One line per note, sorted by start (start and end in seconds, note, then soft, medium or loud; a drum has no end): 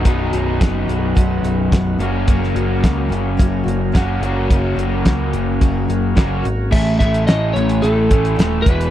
0.04 0.32 B0 medium
0.04 1.98 B1 medium
0.04 1.98 F#2 medium
0.04 0.33 B2 medium
0.04 1.98 F#3 medium
0.04 0.34 F#3 medium
0.04 1.98 B3 medium
0.04 0.34 B3 medium
0.04 1.98 D#4 medium
0.04 0.33 D#4 medium
0.04 0.31 F#4 medium
0.04 1.98 B4 medium
0.04 kick loud
0.04 closed hi-hat medium
0.32 0.60 B0 medium
0.32 0.61 B3 soft
0.32 0.61 D#4 soft
0.32 0.61 F#4 medium
0.32 closed hi-hat medium
0.61 0.87 F#1 medium
0.61 0.89 F#3 medium
0.61 0.90 B3 medium
0.61 0.89 D#4 medium
0.61 0.87 F#4 medium
0.61 kick loud
0.61 snare loud
0.61 closed hi-hat medium
0.88 1.15 B0 medium
0.88 1.16 D#4 medium
0.88 1.16 F#4 medium
0.88 closed hi-hat medium
0.92 1.15 B3 soft
1.15 1.42 B0 medium
1.15 1.44 B2 medium
1.15 1.44 F#3 medium
1.15 1.44 B3 medium
1.15 1.44 D#4 medium
1.15 1.43 F#4 medium
1.15 kick medium
1.15 closed hi-hat medium
1.43 1.70 B0 medium
1.43 1.73 D#4 medium
1.43 1.72 F#4 medium
1.43 closed hi-hat medium
1.47 1.73 B3 soft
1.72 1.98 B0 medium
1.72 2.00 F#3 medium
1.72 2.00 B3 medium
1.72 1.99 D#4 medium
1.72 kick loud
1.72 snare loud
1.72 closed hi-hat medium
1.76 1.97 F#4 medium
1.98 2.26 F#1 medium
1.98 3.92 F#2 medium
1.98 3.93 C#3 medium
1.98 2.27 F#3 soft
1.98 2.28 A#3 soft
1.98 4.21 A#3 medium
1.98 2.27 C#4 medium
1.98 4.21 C#4 medium
1.98 2.27 F#4 medium
1.98 4.21 A#4 medium
1.98 closed hi-hat medium
2.02 4.21 F#3 medium
2.27 2.54 F#1 medium
2.27 2.55 F#2 medium
2.27 2.56 C#3 medium
2.27 2.56 F#3 medium
2.27 2.56 A#3 medium
2.27 2.55 C#4 medium
2.27 2.54 F#4 medium
2.27 kick loud
2.27 closed hi-hat medium
2.44 snare soft
2.55 2.82 F#1 medium
2.55 2.81 F#3 soft
2.55 2.83 A#3 soft
2.55 2.84 C#4 medium
2.55 2.83 F#4 medium
2.55 closed hi-hat medium
2.83 3.09 C#2 medium
2.83 3.11 F#3 medium
2.83 3.11 A#3 medium
2.83 3.09 C#4 medium
2.83 3.08 F#4 medium
2.83 kick loud
2.83 snare loud
2.83 closed hi-hat medium
3.09 3.37 F#1 medium
3.09 3.38 F#3 soft
3.09 3.37 A#3 soft
3.09 3.38 C#4 medium
3.09 3.38 F#4 medium
3.09 closed hi-hat medium
3.37 3.65 F#1 medium
3.37 3.66 F#2 medium
3.37 3.67 C#3 medium
3.37 3.67 F#3 medium
3.37 3.65 A#3 medium
3.37 3.64 C#4 medium
3.37 3.62 F#4 medium
3.37 kick loud
3.37 closed hi-hat medium
3.64 3.93 F#1 medium
3.64 3.92 A#3 medium
3.64 3.93 C#4 medium
3.64 3.93 F#4 medium
3.68 3.91 F#3 soft
3.68 closed hi-hat medium
3.92 4.20 F#1 medium
3.92 4.20 F#2 medium
3.92 4.21 C#3 medium
3.92 4.21 F#3 medium
3.92 4.22 A#3 medium
3.92 4.22 C#4 medium
3.92 4.21 F#4 medium
3.92 kick loud
3.92 snare loud
3.92 closed hi-hat medium
4.20 4.48 F#1 medium
4.20 6.14 F#2 medium
4.20 6.15 C#3 medium
4.20 6.70 A#3 medium
4.20 4.51 A#3 medium
4.20 6.70 C#4 medium
4.20 4.50 C#4 medium
4.20 4.50 F#4 medium
4.20 6.70 F#4 medium
4.20 6.70 A#4 medium
4.20 closed hi-hat medium
4.25 4.50 F#3 medium
4.50 4.75 F#1 medium
4.50 4.78 F#2 medium
4.50 4.78 C#3 medium
4.50 4.78 F#3 medium
4.50 4.78 A#3 medium
4.50 4.77 C#4 medium
4.50 4.75 F#4 medium
4.50 kick loud
4.50 closed hi-hat medium
4.76 5.04 F#1 medium
4.76 5.05 F#3 soft
4.76 5.05 A#3 medium
4.76 5.06 C#4 medium
4.76 5.05 F#4 medium
4.76 closed hi-hat medium
5.05 5.32 C#2 medium
5.05 5.34 F#3 medium
5.05 5.33 A#3 medium
5.05 5.33 C#4 medium
5.05 5.31 F#4 medium
5.05 kick loud
5.05 snare loud
5.05 closed hi-hat medium
5.33 5.60 F#1 medium
5.33 5.62 F#3 soft
5.33 5.62 A#3 soft
5.33 5.61 C#4 medium
5.33 5.61 F#4 medium
5.33 closed hi-hat medium
5.61 5.88 F#1 medium
5.61 5.89 F#2 medium
5.61 5.89 C#3 medium
5.61 5.90 F#3 medium
5.61 5.90 A#3 medium
5.61 5.88 C#4 medium
5.61 5.87 F#4 medium
5.61 kick loud
5.61 closed hi-hat medium
5.88 6.16 F#1 medium
5.88 6.14 F#3 medium
5.88 6.16 A#3 medium
5.88 6.17 C#4 soft
5.88 6.16 F#4 medium
5.88 closed hi-hat medium
6.15 6.43 F#1 medium
6.15 6.42 F#2 medium
6.15 6.43 C#3 medium
6.15 6.44 F#3 medium
6.15 6.45 A#3 medium
6.15 6.42 C#4 medium
6.15 6.43 F#4 medium
6.15 kick loud
6.15 snare loud
6.15 closed hi-hat medium
6.44 6.72 G#1 medium
6.44 6.72 F#3 soft
6.44 6.72 A#3 medium
6.44 6.72 C#4 medium
6.44 6.72 F#4 medium
6.44 closed hi-hat medium
6.71 6.99 A1 medium
6.71 6.99 A2 medium
6.71 7.00 E3 medium
6.71 7.00 A3 medium
6.71 7.00 C#4 medium
6.71 7.00 E4 medium
6.71 6.99 A4 medium
6.71 6.98 E5 medium
6.71 kick loud
6.71 crash loud
6.99 7.27 A1 medium
6.99 7.27 A2 medium
6.99 7.29 E3 medium
6.99 7.28 C#4 soft
6.99 7.29 E4 soft
6.99 7.28 A4 soft
6.99 7.26 E5 medium
6.99 kick medium
6.99 closed hi-hat medium
7.04 7.27 A3 soft
7.14 closed hi-hat medium
7.27 7.55 A1 medium
7.27 7.54 A2 medium
7.27 7.55 E3 medium
7.27 7.55 A3 loud
7.27 7.56 C#4 medium
7.27 7.56 E4 medium
7.27 7.53 D#5 medium
7.27 snare loud
7.27 closed hi-hat medium
7.32 7.55 A4 medium
7.53 7.82 A1 medium
7.53 7.83 A2 medium
7.53 7.83 E3 medium
7.53 7.82 E4 soft
7.53 7.84 A4 medium
7.53 7.83 C#5 medium
7.53 closed hi-hat medium
7.58 7.81 A3 soft
7.58 7.82 C#4 soft
7.69 closed hi-hat medium
7.82 8.36 A1 medium
7.82 8.11 A2 medium
7.82 8.11 E3 medium
7.82 8.11 A3 medium
7.82 8.11 C#4 medium
7.82 8.10 E4 medium
7.82 8.69 A4 medium
7.82 8.08 A4 medium
7.82 closed hi-hat medium
8.09 8.37 A2 medium
8.09 8.38 E3 medium
8.09 8.35 A3 soft
8.09 8.37 C#4 soft
8.09 8.38 E4 soft
8.09 8.38 A4 soft
8.09 kick medium
8.09 closed hi-hat medium
8.25 closed hi-hat medium
8.36 8.64 D#1 medium
8.36 8.65 A2 medium
8.36 8.65 E3 medium
8.36 8.65 A3 medium
8.36 8.66 C#4 medium
8.36 8.63 E4 medium
8.36 8.63 A4 medium
8.36 closed hi-hat medium
8.40 snare loud
8.62 8.90 E1 medium
8.62 8.90 E4 medium
8.62 8.90 G#4 medium
8.62 8.90 B4 loud
8.66 8.90 E2 medium
8.66 8.90 B2 loud
8.66 8.90 E3 loud
8.66 8.90 B3 soft
8.66 kick loud
8.66 closed hi-hat medium
8.81 closed hi-hat medium